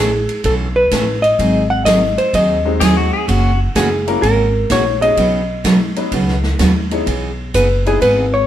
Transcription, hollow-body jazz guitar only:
0.00 0.45 G#4 medium
0.46 0.54 A4 medium
0.76 1.24 B4 loud
1.22 1.70 D#5 loud
1.70 1.84 F#5 loud
1.85 2.18 D#5 loud
2.18 2.34 C5 medium
2.35 2.78 D#5 medium
3.76 4.22 G#4 medium
4.22 4.71 A#4 loud
4.72 5.02 C#5 loud
5.02 6.55 D#5 loud
7.55 7.87 B4 medium
7.87 8.01 G#4 medium
8.02 8.35 B4 loud
8.34 8.47 C#5 loud

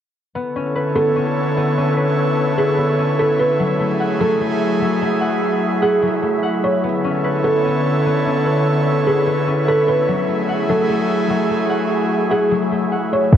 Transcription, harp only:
0.35 0.95 B3 medium
0.56 1.15 C#4 medium
0.75 1.96 B4 medium
0.95 1.57 B3 medium
1.16 1.77 C#4 medium
1.57 2.77 B3 medium
1.78 2.98 C#4 medium
1.97 2.58 B4 medium
2.58 3.19 B4 medium
2.78 5.88 B3 medium
2.99 5.88 C#4 medium
3.19 5.24 B4 medium
3.60 4.19 F#3 medium
3.79 4.40 A3 medium
4.00 5.20 F#5 medium
4.20 4.80 F#3 medium
4.40 5.01 A3 medium
4.81 6.01 F#3 medium
5.02 6.22 A3 medium
5.21 5.82 F#5 medium
5.82 6.43 F#5 medium
6.02 6.89 F#3 medium
6.23 9.55 A3 medium
6.43 8.04 F#5 medium
6.84 7.43 B3 medium
7.04 7.64 C#4 medium
7.24 8.45 B4 medium
7.44 8.05 B3 medium
7.65 8.26 C#4 medium
8.06 9.26 B3 medium
8.26 9.47 C#4 medium
8.46 9.06 B4 medium
9.07 9.68 B4 medium
9.26 12.37 B3 medium
9.47 12.37 C#4 medium
9.68 11.73 B4 medium
10.08 10.68 F#3 medium
10.28 10.89 A3 medium
10.49 11.69 F#5 medium
10.69 11.29 F#3 medium
10.89 11.50 A3 medium
11.30 12.50 F#3 medium
11.50 12.71 A3 medium
11.70 12.30 F#5 medium
12.31 12.91 F#5 medium
12.51 13.37 F#3 medium
12.71 13.37 A3 medium
12.92 13.37 F#5 medium
13.32 13.37 B3 medium

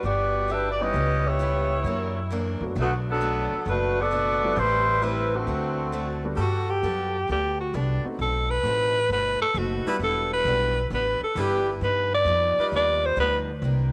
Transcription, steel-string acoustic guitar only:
0.03 0.36 E3 soft
0.03 0.36 G3 medium
0.03 0.37 D4 medium
0.03 0.37 F#4 medium
0.48 0.81 E3 medium
0.48 0.82 G3 medium
0.48 0.82 D4 medium
0.48 0.82 F#4 medium
0.93 1.26 C#3 soft
0.93 1.27 G3 soft
0.93 1.27 B3 medium
0.93 1.28 E4 medium
1.39 1.72 C#3 medium
1.39 1.72 G3 medium
1.39 1.73 B3 medium
1.39 1.73 E4 medium
1.85 2.17 F#2 medium
1.85 2.18 E3 medium
1.85 2.18 A#3 medium
1.85 2.19 D4 medium
2.31 2.63 F#2 medium
2.31 2.63 E3 medium
2.31 2.64 A#3 medium
2.31 2.64 D4 medium
2.75 3.08 B2 soft
2.75 3.08 F#3 soft
2.75 3.09 A3 soft
2.75 3.09 D4 medium
3.21 3.53 B2 medium
3.21 3.54 F#3 medium
3.21 3.54 A3 medium
3.21 3.54 D4 medium
3.65 3.98 B2 soft
3.65 3.99 F#3 soft
3.65 3.99 A3 medium
3.65 4.00 D4 soft
4.11 4.44 B2 medium
4.11 4.44 F#3 medium
4.11 4.44 A3 medium
4.11 4.45 D4 medium
4.57 4.89 A3 soft
4.57 4.90 C4 soft
4.57 4.90 G4 soft
4.57 4.91 B4 soft
5.02 5.35 A3 medium
5.02 5.35 C4 medium
5.02 5.35 G4 medium
5.02 5.35 B4 medium
5.47 5.79 D3 soft
5.47 5.80 A3 soft
5.47 5.80 C4 soft
5.47 5.81 F#4 medium
5.92 6.25 D3 medium
5.92 6.25 A3 medium
5.92 6.25 C4 medium
5.92 6.26 F#4 medium
6.38 6.70 G3 soft
6.38 6.71 B3 soft
6.38 6.71 F#4 soft
6.38 6.71 A4 soft
6.83 7.15 G3 medium
6.83 7.16 B3 medium
6.83 7.16 F#4 medium
6.83 7.16 A4 medium
7.28 7.60 G3 soft
7.28 7.61 B3 soft
7.28 7.61 F#4 soft
7.28 7.62 A4 medium
7.73 8.06 G3 medium
7.73 8.06 B3 medium
7.73 8.07 F#4 medium
7.73 8.07 A4 medium
8.20 8.52 B2 soft
8.20 8.52 A3 soft
8.20 8.53 C4 soft
8.20 8.53 D#4 soft
8.65 8.97 B2 medium
8.65 8.97 A3 medium
8.65 8.98 C4 medium
8.65 8.98 D#4 medium
9.11 9.43 B2 soft
9.11 9.43 A3 soft
9.11 9.43 C4 soft
9.11 9.44 D#4 soft
9.55 9.88 B2 medium
9.55 9.88 A3 medium
9.55 9.88 C4 medium
9.55 9.89 D#4 medium
10.00 10.33 E3 soft
10.00 10.33 B3 soft
10.00 10.33 D4 soft
10.00 10.34 G4 soft
10.46 10.78 E3 medium
10.46 10.79 B3 medium
10.46 10.79 D4 medium
10.46 10.79 G4 medium
10.90 11.23 E3 soft
10.90 11.23 B3 soft
10.90 11.24 D4 soft
10.90 11.24 G4 soft
11.36 11.68 E3 medium
11.36 11.69 B3 medium
11.36 11.69 D4 medium
11.36 11.70 G4 medium
11.81 12.14 G2 soft
11.81 12.14 F3 soft
11.81 12.15 B3 soft
11.81 12.15 D#4 soft
12.26 12.59 G2 medium
12.26 12.59 F3 medium
12.26 12.60 B3 medium
12.26 12.60 D#4 medium
12.72 13.04 G2 soft
12.72 13.05 F3 soft
12.72 13.05 B3 soft
12.72 13.06 D#4 soft
13.16 13.49 G2 medium
13.16 13.49 F3 medium
13.16 13.50 B3 medium
13.16 13.50 D#4 medium
13.63 13.92 C3 soft
13.63 13.92 D#3 medium
13.63 13.92 A#3 medium
13.63 13.92 D4 medium

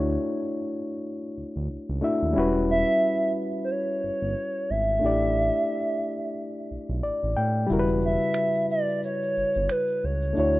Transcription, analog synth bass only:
0.00 0.18 D2 medium
1.37 1.44 D2 soft
1.56 1.68 D2 medium
1.71 1.78 C#2 soft
1.89 2.02 C#2 medium
2.23 2.35 D#2 medium
2.37 2.84 E1 loud
4.04 4.11 G1 soft
4.22 4.35 G1 medium
4.70 5.00 G#1 medium
5.04 5.51 A1 medium
6.71 6.78 B1 soft
6.89 7.02 B1 medium
7.04 7.11 A1 soft
7.23 7.35 A1 medium
7.37 7.67 A2 medium
7.70 8.18 E1 loud
9.37 9.44 G1 soft
9.56 9.69 G1 medium
10.04 10.33 C#2 medium
10.38 10.60 D2 loud

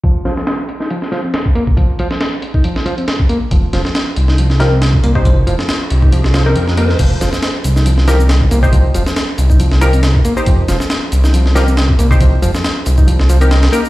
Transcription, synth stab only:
4.60 4.71 D#4 loud
4.60 4.71 G4 medium
4.60 4.71 A#4 loud
5.15 6.32 D#4 medium
5.15 6.32 G4 medium
5.15 6.32 C5 medium
6.46 6.62 D#4 medium
6.46 6.62 G4 medium
6.46 6.62 A#4 medium
6.77 6.89 D#4 medium
6.77 6.89 G4 medium
6.77 6.89 A#4 loud
8.08 8.19 D#4 loud
8.08 8.19 G4 medium
8.08 8.19 A#4 loud
8.63 9.79 D#4 medium
8.63 9.79 G4 medium
8.63 9.79 C5 loud
9.81 9.93 D#4 loud
9.81 9.93 G4 medium
9.81 9.93 A#4 loud
10.37 11.53 D#4 medium
10.37 11.53 G4 medium
10.37 11.53 C5 medium
11.55 11.67 D#4 loud
11.55 11.67 G4 medium
11.55 11.67 A#4 loud
12.11 13.27 D#4 medium
12.11 13.27 G4 medium
12.11 13.27 C5 medium
13.41 13.58 D#4 medium
13.41 13.58 G4 medium
13.41 13.58 A#4 medium
13.72 13.84 D#4 medium
13.72 13.84 G4 medium
13.72 13.84 A#4 loud

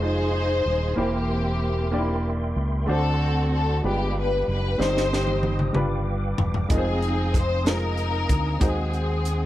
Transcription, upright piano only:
0.00 0.99 G#3 medium
0.00 0.99 D#4 medium
0.00 0.02 F4 medium
0.00 0.60 F4 medium
0.00 0.03 C5 medium
0.00 0.60 C5 medium
0.96 1.89 E3 medium
0.96 1.55 A#3 medium
0.96 1.55 E4 medium
0.96 1.55 G4 medium
0.96 1.56 C5 medium
1.91 2.50 A#3 medium
1.91 1.99 D4 medium
1.91 2.51 G4 medium
1.91 2.51 D5 medium
1.99 2.54 E4 medium
2.87 3.80 D3 medium
2.87 3.46 A3 medium
2.87 3.46 D4 medium
2.87 3.47 F#4 medium
2.87 3.47 C5 medium
3.83 4.76 G3 medium
3.83 4.41 G#3 medium
3.83 4.42 F4 medium
3.83 4.42 G4 medium
3.83 4.43 B4 medium
4.78 5.71 G2 medium
4.78 5.37 G3 medium
4.78 5.37 C4 medium
4.78 5.38 D#4 medium
4.78 5.38 C5 medium
5.73 6.66 G2 medium
5.73 6.32 G3 medium
5.73 6.32 D4 medium
5.73 6.33 F4 medium
5.73 6.33 B4 medium
6.68 7.28 G#3 medium
6.68 7.28 D#4 medium
6.68 7.28 F4 medium
6.68 6.77 A#4 medium
6.78 7.32 C5 medium
7.64 8.23 G#3 medium
7.64 8.23 D#4 medium
7.64 8.24 F4 medium
7.64 8.24 C5 medium
8.60 9.46 D#3 medium
8.60 9.19 G#3 medium
8.60 9.19 D#4 medium
8.60 9.20 F#4 medium
8.60 9.20 C5 medium

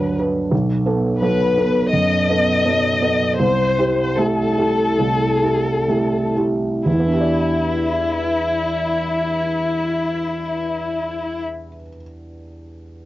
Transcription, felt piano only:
0.00 0.54 D2 soft
0.00 0.54 F#3 soft
0.00 0.18 D4 soft
0.00 0.19 B4 soft
0.18 0.49 D4 soft
0.18 0.49 B4 soft
0.51 0.85 B1 soft
0.86 1.18 B3 soft
0.86 1.18 A4 soft
1.22 1.53 F#3 soft
1.22 1.54 B3 soft
1.22 1.54 A4 soft
1.57 1.89 B3 soft
1.57 1.89 A4 soft
1.93 2.28 F#2 soft
2.29 2.62 B3 soft
2.29 2.62 A4 soft
2.65 2.98 F#3 soft
2.65 2.99 B3 soft
2.65 2.99 A4 soft
3.02 3.36 B3 soft
3.02 3.36 A4 soft
3.40 3.78 C2 soft
3.79 4.14 E4 soft
3.79 4.14 G4 soft
4.18 4.54 A3 soft
4.18 4.54 E4 soft
4.18 4.54 G4 soft
4.58 4.95 E4 soft
4.58 4.96 G4 soft
4.99 5.42 C2 soft
5.42 5.85 E4 soft
5.42 5.85 G4 soft
5.88 6.33 A3 soft
5.88 6.33 E4 soft
5.88 6.33 G4 soft
6.36 6.81 E4 soft
6.36 6.82 G4 soft
6.85 11.68 E2 soft
6.93 11.76 E3 soft
6.99 11.82 B3 soft
7.06 11.89 D4 soft
7.13 11.96 G4 soft
7.20 12.03 D5 soft

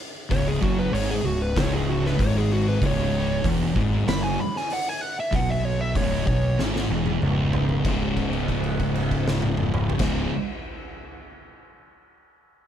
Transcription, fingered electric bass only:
0.31 0.60 C#1 medium
0.62 0.91 F#1 medium
0.93 1.22 G#1 loud
1.24 1.54 C#1 medium
1.56 2.15 C#1 loud
2.19 2.78 G#1 medium
2.82 3.40 C#1 medium
3.45 3.74 E1 medium
3.76 4.05 G#1 loud
4.07 4.36 F#1 medium
5.33 5.92 B1 medium
5.95 6.25 C#1 medium
6.27 6.56 B1 medium
6.59 6.88 G#1 medium
6.90 7.19 E1 loud
7.22 7.81 C#1 medium
7.85 9.88 C#1 medium
10.00 10.26 C#1 medium

